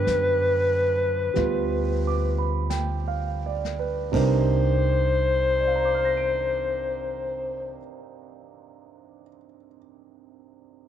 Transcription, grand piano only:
0, 0, Header, 1, 2, 480
1, 0, Start_track
1, 0, Key_signature, -3, "minor"
1, 0, Tempo, 1279318
1, 504, Tempo, 1348315
1, 984, Tempo, 1428571
1, 1464, Tempo, 1466993
1, 1465, Time_signature, 4, 2, 24, 8
1, 3676, End_track
2, 0, Start_track
2, 0, Title_t, "Grand piano"
2, 0, Program_c, 0, 0
2, 0, Control_c, 0, 64, 127
2, 0, Note_on_c, 0, 50, 45
2, 0, Note_on_c, 0, 53, 50
2, 0, Note_on_c, 0, 59, 47
2, 0, Note_on_c, 0, 62, 45
2, 0, Note_on_c, 0, 67, 54
2, 502, Note_off_c, 0, 59, 0
2, 502, Note_on_c, 0, 55, 39
2, 508, Note_on_c, 0, 59, 32
2, 513, Note_on_c, 0, 65, 41
2, 764, Note_on_c, 0, 86, 36
2, 875, Note_on_c, 0, 83, 40
2, 902, Note_off_c, 0, 86, 0
2, 987, Note_on_c, 0, 79, 38
2, 1037, Note_off_c, 0, 83, 0
2, 1113, Note_on_c, 0, 77, 40
2, 1217, Note_off_c, 0, 79, 0
2, 1243, Note_on_c, 0, 74, 40
2, 1320, Note_off_c, 0, 77, 0
2, 1354, Note_on_c, 0, 71, 44
2, 1381, Note_off_c, 0, 74, 0
2, 1463, Note_off_c, 0, 53, 0
2, 1463, Note_on_c, 0, 48, 52
2, 1464, Note_off_c, 0, 55, 0
2, 1464, Note_off_c, 0, 62, 0
2, 1465, Note_off_c, 0, 50, 0
2, 1465, Note_on_c, 0, 60, 45
2, 1466, Note_off_c, 0, 59, 0
2, 1466, Note_off_c, 0, 67, 0
2, 1468, Control_c, 0, 64, 0
2, 1468, Note_on_c, 0, 62, 48
2, 1469, Note_off_c, 0, 65, 0
2, 1470, Note_on_c, 0, 63, 47
2, 1471, Note_on_c, 0, 70, 54
2, 1519, Note_off_c, 0, 71, 0
2, 1527, Control_c, 0, 64, 127
2, 1949, Note_on_c, 0, 74, 35
2, 1972, Note_on_c, 0, 77, 33
2, 1999, Note_on_c, 0, 82, 32
2, 2030, Note_on_c, 0, 86, 29
2, 2062, Note_on_c, 0, 89, 27
2, 2096, Note_on_c, 0, 94, 27
2, 2135, Note_on_c, 0, 98, 26
2, 2656, Note_off_c, 0, 48, 0
2, 2657, Note_off_c, 0, 60, 0
2, 2661, Note_off_c, 0, 62, 0
2, 2663, Note_off_c, 0, 63, 0
2, 2664, Note_off_c, 0, 70, 0
2, 3129, Note_off_c, 0, 74, 0
2, 3152, Note_off_c, 0, 77, 0
2, 3179, Note_off_c, 0, 82, 0
2, 3210, Note_off_c, 0, 86, 0
2, 3241, Note_off_c, 0, 89, 0
2, 3275, Note_off_c, 0, 94, 0
2, 3315, Note_off_c, 0, 98, 0
2, 3676, End_track
0, 0, End_of_file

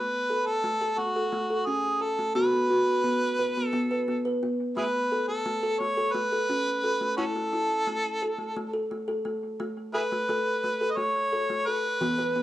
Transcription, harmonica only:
0, 0, Header, 1, 2, 480
1, 0, Start_track
1, 0, Key_signature, 3, "major"
1, 0, Tempo, 688863
1, 1643, Time_signature, 7, 3, 24, 8
1, 8659, End_track
2, 0, Start_track
2, 0, Title_t, "Harmonica"
2, 0, Program_c, 0, 22
2, 0, Note_on_c, 0, 71, 91
2, 323, Note_on_c, 0, 69, 86
2, 333, Note_off_c, 0, 71, 0
2, 687, Note_on_c, 0, 66, 72
2, 697, Note_off_c, 0, 69, 0
2, 1159, Note_on_c, 0, 68, 73
2, 1170, Note_off_c, 0, 66, 0
2, 1404, Note_on_c, 0, 69, 73
2, 1414, Note_off_c, 0, 68, 0
2, 1637, Note_off_c, 0, 69, 0
2, 1641, Note_on_c, 0, 71, 90
2, 2561, Note_off_c, 0, 71, 0
2, 2561, Note_on_c, 0, 69, 90
2, 3055, Note_off_c, 0, 69, 0
2, 3323, Note_on_c, 0, 64, 58
2, 3323, Note_on_c, 0, 68, 58
2, 3323, Note_on_c, 0, 71, 83
2, 3366, Note_off_c, 0, 68, 0
2, 3375, Note_off_c, 0, 64, 0
2, 3659, Note_off_c, 0, 71, 0
2, 3677, Note_on_c, 0, 69, 74
2, 4040, Note_on_c, 0, 73, 81
2, 4051, Note_off_c, 0, 69, 0
2, 4268, Note_on_c, 0, 71, 93
2, 4279, Note_off_c, 0, 73, 0
2, 4992, Note_off_c, 0, 71, 0
2, 4996, Note_on_c, 0, 61, 58
2, 4996, Note_on_c, 0, 66, 58
2, 4996, Note_on_c, 0, 69, 83
2, 5044, Note_off_c, 0, 61, 0
2, 5050, Note_off_c, 0, 66, 0
2, 6175, Note_off_c, 0, 69, 0
2, 6924, Note_on_c, 0, 64, 57
2, 6924, Note_on_c, 0, 68, 57
2, 6924, Note_on_c, 0, 71, 82
2, 6974, Note_off_c, 0, 68, 0
2, 6983, Note_off_c, 0, 64, 0
2, 7603, Note_on_c, 0, 75, 72
2, 7614, Note_off_c, 0, 71, 0
2, 7647, Note_on_c, 0, 73, 101
2, 7657, Note_off_c, 0, 75, 0
2, 8131, Note_on_c, 0, 71, 85
2, 8142, Note_off_c, 0, 73, 0
2, 8659, Note_off_c, 0, 71, 0
2, 8659, End_track
0, 0, End_of_file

